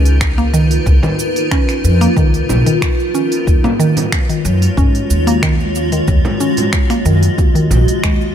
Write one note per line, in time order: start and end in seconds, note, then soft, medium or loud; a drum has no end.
0.00 0.77 C#2 medium
0.00 0.36 C#4 medium
0.00 3.43 D#4 medium
0.00 3.43 F4 medium
0.00 3.43 A#4 medium
0.00 3.43 B4 medium
0.05 open hi-hat medium
0.05 shaker soft
0.21 finger snap loud
0.21 kick loud
0.21 shaker soft
0.38 0.47 A#3 loud
0.38 shaker soft
0.54 0.70 D#3 loud
0.54 shaker medium
0.71 open hi-hat medium
0.71 shaker soft
0.86 0.97 C#2 loud
0.86 kick medium
0.86 shaker soft
1.03 1.18 D#3 medium
1.03 frame drum loud
1.03 shaker soft
1.19 shaker medium
1.36 open hi-hat medium
1.36 shaker soft
1.51 1.99 C#4 medium
1.51 finger snap medium
1.51 kick loud
1.51 shaker soft
1.69 finger snap soft
1.69 open hi-hat soft
1.69 shaker soft
1.84 2.05 F2 loud
1.84 shaker medium
2.01 2.10 A#3 loud
2.01 open hi-hat medium
2.01 shaker soft
2.17 2.49 C#2 medium
2.17 2.33 D#3 loud
2.17 kick loud
2.17 shaker soft
2.34 open hi-hat soft
2.34 shaker soft
2.49 2.60 B1 medium
2.49 frame drum medium
2.49 shaker medium
2.66 2.81 D#3 medium
2.66 open hi-hat medium
2.66 shaker soft
2.82 finger snap loud
2.82 kick loud
2.82 shaker soft
3.00 shaker soft
3.14 3.47 C#4 medium
3.14 shaker medium
3.32 open hi-hat medium
3.32 shaker soft
3.47 3.58 D#2 loud
3.47 8.35 G#3 medium
3.47 8.35 F4 medium
3.47 8.35 F#4 medium
3.47 6.06 C#5 medium
3.47 kick loud
3.47 shaker soft
3.64 3.73 A#3 loud
3.64 frame drum medium
3.64 shaker soft
3.79 3.96 D#3 loud
3.79 shaker medium
3.97 open hi-hat medium
3.97 frame drum medium
3.97 shaker soft
4.12 finger snap loud
4.12 kick loud
4.12 shaker soft
4.29 4.44 D#3 medium
4.29 open hi-hat soft
4.29 shaker soft
4.45 4.66 F#2 loud
4.45 shaker medium
4.62 open hi-hat medium
4.62 shaker soft
4.77 4.99 G#2 medium
4.77 5.26 C#4 medium
4.77 kick loud
4.77 shaker soft
4.95 open hi-hat soft
4.95 shaker soft
5.10 5.99 D#2 medium
5.10 shaker medium
5.27 5.36 A#3 loud
5.27 open hi-hat medium
5.27 shaker soft
5.43 5.59 D#3 loud
5.43 finger snap loud
5.43 kick loud
5.43 shaker soft
5.60 shaker soft
5.75 shaker medium
5.92 6.07 D#3 medium
5.92 open hi-hat medium
5.92 shaker soft
6.08 6.19 D#2 loud
6.08 8.35 D#5 medium
6.08 kick loud
6.08 shaker soft
6.25 frame drum medium
6.25 shaker soft
6.40 6.89 C#4 medium
6.40 shaker medium
6.57 open hi-hat medium
6.57 frame drum medium
6.57 shaker soft
6.73 finger snap loud
6.73 kick loud
6.73 shaker soft
6.90 6.99 A#3 medium
6.90 finger snap soft
6.90 open hi-hat soft
6.90 shaker soft
7.05 7.27 F#2 medium
7.05 7.22 D#3 loud
7.05 shaker medium
7.23 open hi-hat medium
7.23 shaker soft
7.38 7.70 D#2 medium
7.38 kick loud
7.38 shaker soft
7.55 7.70 D#3 medium
7.55 open hi-hat soft
7.55 shaker soft
7.71 7.82 A#1 loud
7.71 frame drum medium
7.71 shaker medium
7.88 open hi-hat medium
7.88 shaker soft
8.04 8.35 D#2 medium
8.04 8.20 G#3 medium
8.04 finger snap loud
8.04 kick loud
8.04 shaker soft
8.21 shaker soft